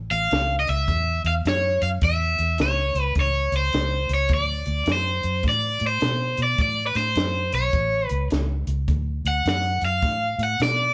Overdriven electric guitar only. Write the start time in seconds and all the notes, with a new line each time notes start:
0.11 F5
0.60 D#5
0.70 E5
1.27 F5
1.48 C#5
1.83 F5
2.04 E5
2.62 C#5
3.02 B4
3.20 C#5
3.56 C5
4.14 C#5
4.34 D5
4.92 C5
5.49 D5
5.87 C5
6.43 D5
6.62 D5
6.87 B4
6.97 C5
7.55 C#5
8.07 B4
9.28 F#5
9.49 F#5
9.85 F5
10.43 F#5
10.63 D5